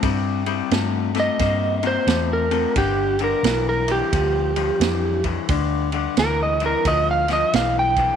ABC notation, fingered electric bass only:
X:1
M:4/4
L:1/8
Q:"Swing" 1/4=88
K:Gdor
V:1 name="Fingered electric bass" clef=bass
G,,2 G,,2 G,,2 E,,2 | G,,,2 =B,,,2 D,,2 F,,2 | D,,2 D,,2 D,,2 =B,,,2 |]